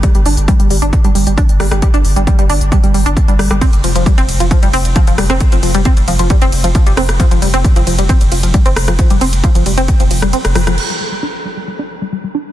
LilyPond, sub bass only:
\new Staff \with { instrumentName = "Sub bass" } { \clef bass \time 4/4 \key f \dorian \tempo 4 = 134 r16 g,,16 g,,16 g,,16 r16 g,,16 g,,16 g,,16 r16 g,,16 g,,16 g,,16 r16 g,,16 g,,16 g,,16 | r16 g,,16 g,,16 g,,16 r16 g,,16 g,,16 g,,16 r16 g,,16 g,,16 g,,16 r16 g,,16 g,,16 g,,16 | r16 f,,16 f,,16 f,,16 r16 f,,16 f,,16 f,,16 r16 f,,16 f,,16 f,,16 r16 f,,16 f,,16 f,,16 | r16 f,,16 f,,16 f,,16 r16 f,,16 f,,16 f,,16 r16 f,,16 f,,16 f,,16 r16 f,,16 f,,16 f,,16 |
r16 f,,16 f,,16 f,,16 r16 f,,16 f,,16 f,,16 r16 f,,16 f,,16 f,,16 r16 f,,16 f,,16 f,,16 | r16 f,,16 f,,16 f,,16 r16 f,,16 f,,16 f,,16 r16 f,,16 f,,16 f,,16 r16 f,,16 f,,16 f,,16 | r1 | }